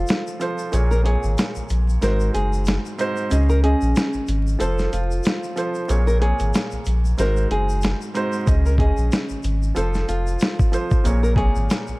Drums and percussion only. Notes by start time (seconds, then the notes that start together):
0.07 snare, closed hi-hat, shaker
0.27 shaker
0.41 closed hi-hat, shaker
0.58 shaker
0.73 closed hi-hat, shaker
0.91 shaker
1.06 closed hi-hat
1.23 shaker
1.38 snare, closed hi-hat, shaker
1.55 shaker
1.69 closed hi-hat, shaker
1.89 shaker
2.02 snare, closed hi-hat, shaker
2.20 shaker
2.35 closed hi-hat, shaker
2.53 shaker
2.65 snare, closed hi-hat, shaker
2.85 shaker
2.99 closed hi-hat, shaker
3.17 shaker
3.31 closed hi-hat, shaker
3.50 shaker
3.64 closed hi-hat
3.81 shaker
3.96 snare, closed hi-hat, shaker
4.13 shaker
4.27 closed hi-hat, shaker
4.47 shaker
4.60 closed hi-hat, shaker
4.78 snare, shaker
4.93 closed hi-hat, shaker
5.11 shaker
5.23 snare, closed hi-hat, shaker
5.43 shaker
5.57 closed hi-hat, shaker
5.75 shaker
5.89 closed hi-hat, shaker
6.08 shaker
6.22 closed hi-hat
6.39 closed hi-hat, shaker
6.54 snare, closed hi-hat, shaker
6.71 shaker
6.85 closed hi-hat, shaker
7.05 shaker
7.18 snare, closed hi-hat, shaker
7.36 shaker
7.51 closed hi-hat
7.69 shaker
7.81 snare, closed hi-hat, shaker
8.02 shaker
8.15 closed hi-hat, shaker
8.33 shaker
8.47 kick, closed hi-hat, shaker
8.66 shaker
8.78 kick, closed hi-hat
8.97 shaker
9.12 snare, closed hi-hat, shaker
9.29 shaker
9.43 closed hi-hat, shaker
9.63 shaker
9.76 closed hi-hat, shaker
9.94 snare, shaker
10.09 closed hi-hat, shaker
10.27 shaker
10.39 snare, closed hi-hat, shaker
10.59 kick, shaker
10.73 closed hi-hat, shaker
10.91 kick, shaker
11.05 closed hi-hat, shaker
11.24 shaker
11.36 kick, closed hi-hat
11.56 shaker
11.70 snare, closed hi-hat, shaker
11.87 shaker